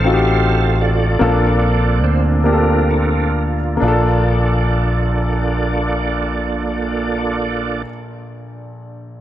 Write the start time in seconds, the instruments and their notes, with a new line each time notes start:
Already playing: fingered electric bass A1, grand piano C4 D#4 F4 A4, tonewheel organ A4 C5 F5
0.04 grand piano C4 D#4 F4 F#4
0.14 grand piano G4
0.81 tonewheel organ F4 A4 D5
1.19 fingered electric bass A#1, grand piano A#2 A#3 C#4 F4 A4, tonewheel organ A#3 C4 D4
1.27 grand piano D4
2.03 fingered electric bass D2, tonewheel organ C5
2.44 grand piano A#3 D4 F4 G4, tonewheel organ D4 F4 A#4
2.53 grand piano A4
2.91 tonewheel organ C4 D4 A4
3.77 grand piano A#3 D4
3.82 grand piano A#1 F4, fingered electric bass A#1, tonewheel organ A#3 D4 F4 A4 D5
3.88 grand piano A4